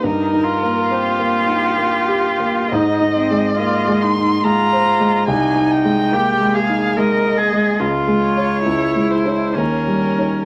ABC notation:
X:1
M:3/4
L:1/8
Q:1/4=70
K:Ab
V:1 name="Violin"
B2 G4 | e3 c' b2 | a g2 f e2 | z d2 c B2 |]
V:2 name="Cello"
E F4- F | E C F E F2 | E2 G A B A | F2 _F2 D2 |]
V:3 name="Grand piano"
(3G,, E B, (3C B, E (3B, G B, | (3A,, E A, (3B, A, E (3A, c A, | (3C,, E A, (3B, A, E (3A, e A, | (3D,, A, [Fd] (3D,, A, [_Fd] (3E,, G, [Ed] |]